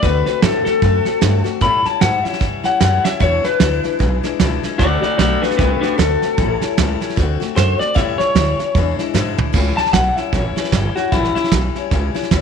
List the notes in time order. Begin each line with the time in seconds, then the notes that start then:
0.03 D2 D3 A3 C4 F#4 B4, kick, snare
0.26 A3 C4 F#4 B4, snare
0.42 A2 D3 A3 C4 F#4 A4, snare, hi-hat pedal
0.65 A3 C4 F#4 A4, muted upright bass stroke, snare
0.82 F#2 D3 A3 C4 F#4, kick, snare
1.05 A3 C4 F#4, snare
1.21 G2 D3 A3 C4 F#4, snare, hi-hat pedal
1.44 A3 C4 F#4, muted upright bass stroke, snare
1.61 A2 E3 G3 C#4 E4 B5, kick, snare
1.84 G3 C#4 E4 A5, muted upright bass stroke, snare
2.01 G#2 A2 E3 G3 C#4 E4 F#5, snare, hi-hat pedal
2.24 G3 C#4 E4 E5, muted upright bass stroke, snare
2.33 snare
2.40 G2 E3 G3 C#4 E4, kick, snare
2.63 G3 C#4 E4 F#5, muted upright bass stroke, snare
2.80 F#2 A2 E3 G3 C#4 E4 F#5, snare, hi-hat pedal
3.04 G3 C#4 E4 E5, muted upright bass stroke, snare
3.20 E2 B2 E3 G#3 D4 E4 C#5, kick, snare
3.44 E3 G#3 D4 E4 B4, snare
3.60 D2 E2 B2 E3 G#3 D4 E4, snare, hi-hat pedal
3.83 E3 G#3 D4 E4, snare
3.99 B1 E3 G#3 D4 E4, kick, snare
4.23 E3 G#3 D4 E4, snare
4.40 C#2 E2 B2 E3 G#3 D4 E4, snare, hi-hat pedal
4.63 E3 G#3 D4 E4, muted upright bass stroke, snare
4.78 D2 D3 A3 F#4 D5, kick, snare
4.82 C4 F#4
5.02 C4 F#4 D5, muted upright bass stroke, snare
5.07 A3
5.18 B1 D3 A3 C4 F#4 D5, snare, hi-hat pedal
5.42 C4 D4 F#4 B4, muted upright bass stroke, snare
5.46 A3
5.51 snare
5.57 C2 D3 A3 C4 D4 F#4 B4, kick, snare
5.81 A3 C4 D4 F#4 B4, muted upright bass stroke, snare
5.98 D2 D3 A3 C4 F#4 A4, snare, hi-hat pedal
6.22 A3 C4 F#4, snare
6.37 A1 A2 E3 G3 C#4 E4, kick, snare
6.61 G3 C#4 E4, muted upright bass stroke, snare
6.77 C#2 A2 E3 G3 C#4 E4, snare, hi-hat pedal
7.00 G3 C#4 E4, muted upright bass stroke, snare
7.10 snare
7.16 D2 D3 A3 C4 F#4, kick, snare
7.40 A3 C4 F#4, muted upright bass stroke, snare
7.56 F#2 D3 A3 C4 F#4 C5, snare, hi-hat pedal
7.79 A3 C4 F#4 D5, muted upright bass stroke, snare
7.94 A2 E3 G3 C#4 E4 E5, kick, snare
8.18 G3 C#4 E4 C#5, muted upright bass stroke, snare
8.35 D2 A2 E3 G3 C#4 E4, snare, hi-hat pedal
8.58 G3 C#4 E4, muted upright bass stroke, snare
8.75 E2 E3 G#3 D4 E4, kick, snare
8.99 E3 G#3 D4 E4, muted upright bass stroke, snare
9.14 E2 G#2 B2 E3 G#3 D4 E4, snare, hi-hat pedal
9.37 E3 G#3 D4 E4, muted upright bass stroke, floor tom
9.53 C#2 A2 E3 G3 C#4 E4, kick, snare, crash
9.77 G3 C#4 E4 A5, snare
9.86 snare
9.93 B1 A2 E3 G3 C#4 E4 F#5, kick, snare, hi-hat pedal
10.16 G3 C#4 E4 E5, muted upright bass stroke, snare
10.32 A1 E3 G3 C#4 E4 C#5, kick, snare
10.56 G3 C#4 E4 B4, snare
10.64 snare
10.71 G1 A2 E3 G3 C#4 E4 A4, kick, snare, hi-hat pedal
10.95 G3 C#4 E4 F#4, muted upright bass stroke, snare
11.12 A1 A2 E3 G3 C#4 E4, kick, snare
11.25 snare
11.35 G3 C#4 E4, muted upright bass stroke, snare
11.44 snare
11.51 B1 A2 E3 G3 C#4 E4, kick, snare, hi-hat pedal
11.75 G3 C#4 E4, snare
11.91 C#2 E3 G3 C#4 E4, kick, snare
12.14 G3 C#4 E4, snare
12.23 snare
12.31 D2 A2 E3 G3 C#4 E4, kick, snare, hi-hat pedal